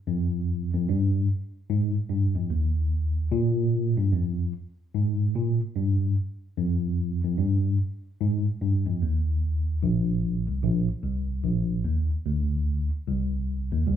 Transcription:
0.07 F2
0.73 F2
0.89 G2
1.70 G#2
2.09 G2
2.35 F2
2.50 D#2
3.32 A#2
3.98 G2
4.13 F2
4.95 G#2
5.35 A#2
5.75 G2
6.57 F2
7.24 F2
7.38 G2
8.21 G#2
8.61 G2
8.87 F2
9.02 D#2
9.83 A#1
10.48 C2
10.63 A#1
11.04 C2
11.44 A#1
11.85 D#2
12.26 D2
13.07 C2
13.72 D#2
13.87 C2

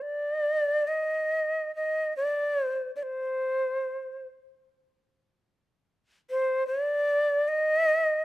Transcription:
0.02 D5
0.87 D#5
1.76 D#5
2.17 D5
2.65 C5
2.96 D5
3.03 C5
6.30 C5
6.67 D5
7.48 D#5

